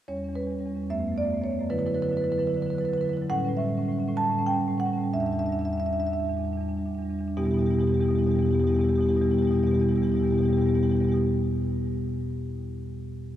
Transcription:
marimba
0.08 E2 G3 C#4 C#5
0.16 E2 G3 C#4
0.24 E2 G3 C#4
0.33 E2 G3 C#4 B4
0.41 G3 C#4
0.47 E2 G3 C#4
0.56 E2 C#4
0.60 G3
0.66 E2 G3 C#4
0.75 E2 G3 C#4
0.84 C#4
0.90 F#2 A3 B3 E5
0.97 F#2 A3 B3
1.06 A3 B3
1.12 F#2 B3
1.17 A3 D5
1.22 F#2 A3 B3
1.31 F#2 A3 B3
1.38 F#2 B3
1.42 A3 B3 C#5
1.50 F#2 A3 B3
1.59 F#2 A3 B3
1.70 D3 F#3 E4 B4
1.78 D3 F#3 E4 B4
1.86 D3 F#3 E4 B4
1.94 D3 F#3 E4 B4
2.02 D3 F#3 E4 B4
2.09 D3 F#3 E4 B4
2.17 D3 E4 B4
2.22 F#3 E4 B4
2.29 D3 F#3 E4 B4
2.38 D3 F#3 E4 B4
2.47 D3 F#3 E4 B4
2.54 D3 F#3 E4 B4
2.62 D3 F#3 E4 B4
2.70 F#3 E4 B4
2.75 D3 B4
2.80 F#3 E4
2.84 D3 B4
2.89 F#3 E4
2.93 D3 B4
2.97 D3 F#3 E4 B4
3.05 F#3 E4
3.09 D3 B4
3.13 D3 F#3 E4 B4
3.21 F#3 E4
3.30 A2 G3 C#4 F#5
3.37 A2 G3 C#4
3.45 A2 G3 C#4
3.53 G3 C#4
3.57 A2 C#4 E5
3.65 A2 G3 C#4
3.75 G3 C#4
3.79 A2 G3
3.85 A2 C#4
3.91 G3 C#4
3.99 A2 G3 C#4
4.08 A2 G3 C#4
4.16 A2 G3 C#4 A5
4.24 G3 C#4
4.29 A2 C#4
4.34 G3
4.39 A2 G3 C#4
4.46 A2 C#4 G5
4.51 G3 C#4
4.58 A2 G3 C#4
4.68 A2 G3 C#4
4.78 A2 G3 C#4 F#5
4.85 G3 C#4
4.93 G3 C#4
4.98 A2 C#4
5.03 G3
5.13 E2 G3 D4 E5
5.20 E2 G3 D4 E5
5.26 D4 E5
5.31 E2 G3 E5
5.36 D4 E5
5.40 G3
5.44 E2 D4 E5
5.49 G3 D4 E5
5.54 E2
5.59 G3 D4 E5
5.65 E2 G3 E5
5.70 D4 E5
5.77 E2 G3 D4 E5
5.86 E2 G3 D4 E5
5.93 E2 G3 D4 E5
6.00 D4 E5
6.07 E2 G3 E5
6.12 G3 D4 E5
6.20 E2 D4
6.25 G3
6.29 E2 D4
6.34 G3 D4
6.39 E2
6.43 G3 D4
6.48 E2 G3
6.53 D4
6.58 E2 G3 D4
6.68 E2 G3 D4
6.77 E2 G3 D4
6.86 E2 G3 D4
6.95 G3 D4
6.99 E2 D4
7.05 G3
7.10 E2 D4
7.14 G3
7.19 E2 D4
7.24 G3
7.28 D4
7.37 E2 B2 G3 B3 E4 G4
7.43 B2 G3 B3 E4 G4
7.48 E2 G4
7.53 B2 G3 B3 E4
7.58 E2 G3 B3 E4 G4
7.66 E2 B2 G3 G4
7.70 B2 B3 E4 G4
7.76 E2 G3 B3 E4
7.81 B2 G3 G4
7.87 E2 B2 B3 E4 G4
7.92 G3 E4 G4
7.97 E2 B2 B3 G4
8.01 G3 E4
8.06 E2 B2 B3 G4
8.10 G3 B3 E4
8.15 E2 B2 G3 E4 G4
8.22 B3 G4
8.26 E2 B2 G3 E4
8.31 B3 G4
8.35 B2 G3 B3 E4 G4
8.39 E2 G3 E4
8.45 E2 B2 B3 G4
8.51 G3 B3 E4 G4
8.55 B2
8.59 E2 G3 E4 G4
8.64 B2 G3 B3 E4 G4
8.69 E2 B2
8.73 G3 B3 E4 G4
8.79 E2 B2 B3 G4
8.84 G3 E4
8.88 E2 B2 G3 B3 G4
8.93 E4 G4
8.98 E2 B2 G3 B3 E4
9.02 G4
9.06 B2 G3 B3 E4 G4
9.11 E2 B3
9.15 B2 G3 E4 G4
9.21 E2 B2 B3 E4 G4
9.26 G3
9.30 E2 B2 B3 E4 G4
9.34 G3 G4
9.39 E2 B2 G3 B3 E4
9.45 B3 E4 G4
9.51 E2 B2 G3 G4
9.55 B2 G3 B3 E4
9.59 B3 E4 G4
9.63 E2 G3 G4
9.68 B2 B3 E4
9.73 E2 G3 G4
9.78 B2 B3 E4 G4
9.82 E2 G3
9.87 B2 G3 B3 E4 G4
9.92 E2 B2
9.96 G3 B3 E4 G4
10.02 E2 B2 E4 G4
10.07 G3 B3 G4
10.12 E2 B2 G3 E4
10.16 B3 E4 G4
10.22 E2 B2 G3 B3 G4
10.28 B2 E4 G4
10.32 E2 G3 B3 E4
10.38 B2 G3 B3 G4
10.43 E2 E4 G4
10.48 B2 G3 B3 E4
10.53 E2 G4
10.57 B2 G3 B3 E4 G4
10.64 E2 B2 G3 B3 E4
10.69 G4
10.74 E2 B2 G3 B3 E4 G4
10.83 E2 B2 G3 B3 E4 G4
10.89 E2 G3 B3 E4 G4
10.95 B2 G4
11.00 E2 G3 B3 E4
11.04 B2 E4 G4
11.09 E2 G3 B3 G4
11.14 B2 E4

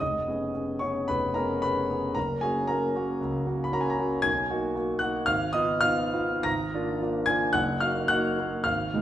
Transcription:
grand piano
0.00 F1 D#5 D#6
0.27 B3 C#4 G#4
0.54 B3 C#4 G#4
0.79 B3 C#4 G#4 C#5 C#6
1.08 F1 B4 B5
1.34 B3 C#4 G#4 A#4 A#5
1.62 B3 C#4 G#4 B4 B5
1.90 B3 C#4 G#4
2.15 F#1 A#4 A#5
2.41 A#3 C#4 F#4 G#4 G#5
2.67 A#3 C#4 F#4 A#4 A#5
2.95 A#3 C#4 F#4
3.21 C#2
3.46 A#3 C#4 F#4
3.64 B5
3.72 A#3 C#4 F#4 A#5
3.81 G#5
3.90 A#5
3.98 A#3 C#4 F#4
4.22 B1 G#5 G#6
4.50 A#3 D#4 F#4
4.75 A#3 D#4 F#4
4.99 A#3 D#4 F#4 F#5 F#6
5.26 G#1 F5 F6
5.53 B3 D#4 F4 D#5 D#6
5.81 B3 D#4 F4 F5 F6
6.13 B3 D#4 F4
6.43 G#1 A#5 A#6
6.74 A#3 D4 F4
7.01 A#3 D4 F4
7.26 A#3 D4 F4 G#5 G#6
7.53 F#1 F#5 F#6
7.80 A#3 D#4 F#4 F5 F6
8.08 A#3 D#4 F#4 F#5 F#6
8.38 A#3 D#4 F#4
8.64 G#1 F5 F6
8.94 G#3 B3 D#4

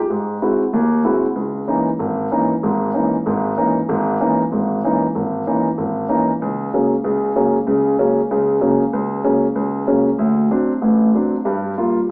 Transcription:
grand piano
0.10 G#2
0.42 G#3 C4 E4 F#4
0.73 D#2
1.04 G#3 C4 E4 F#4
1.35 C#2
1.67 E3 A#3 C#4 D#4
1.99 G#1
2.31 E3 A#3 C#4 D#4
2.63 G#1 G#2
2.94 E3 A#3 C#4 D#4
3.26 G#1 G#2
3.57 E3 A#3 C#4 D#4
3.89 G#1 G#2
4.20 E3 A#3 C#4 D#4
4.52 G#1 G#2
4.84 E3 A#3 C#4 D#4
5.15 G#1
5.47 E3 A#3 C#4 D#4
5.78 G#1
6.08 E3 A#3 C#4 D#4
6.42 C#2
6.74 C#3 F#3 A#3 C#4
7.04 C#2 C#3
7.36 C#3 F#3 A#3 C#4
7.67 C#2 C#3
7.98 C#3 F#3 A#3 C#4
8.31 C#2 C#3
8.61 C#3 F#3 A#3 C#4
8.93 C#2
9.24 C#3 F#3 A#3 C#4
9.55 C#2
9.87 C#3 F#3 A#3 C#4
10.19 D2
10.50 F#3 C4 D4
10.82 A1 A2
11.14 F#3 C4 D4
11.45 G2 G3
11.77 G3 A#3 F4

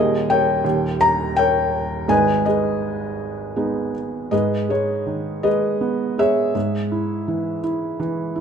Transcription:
felt piano
Already playing: D#1 D#2 G#4 A#4 D#5
0.30 A#4 C#5 G5
0.64 D#1 D#2
1.01 A#5
1.37 A#4 C#5 G5
2.08 G#1 G#2 B4 D#5 G#5
2.45 G#4 B4 D#5
3.56 G#3 B3 D#4
4.31 G#2 G#4 B4 D#5
4.69 G#3 G#4 C#5
5.06 D#3
5.43 G#3 G#4 B4 D#5
5.81 B3
6.18 G#3 G#4 C#5 E5
6.55 G#2
6.92 E4
7.28 E3
7.63 E4
8.00 E3
8.36 E4

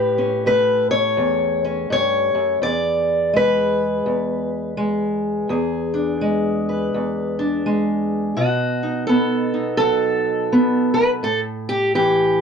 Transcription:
steel-string acoustic guitar
Already playing: A2 G4 B4
0.18 C#4
0.46 A3 B4
0.91 C#5
1.17 E2
1.65 C#4
1.90 G2 C#5
2.35 F#2
2.62 E2 D5
3.33 G#3 B4
4.06 E2
4.77 G#3
5.49 E2 G#4
5.94 D4
6.21 G#3
6.69 B4
6.94 E2
7.39 D4
7.66 G#3
8.37 B2 F#4
8.83 D#4
9.07 B3 A4
9.54 D#4
9.77 F#3 A4
10.52 B3
10.94 B4
11.23 A2 A4
11.69 G4
11.95 E3 G4

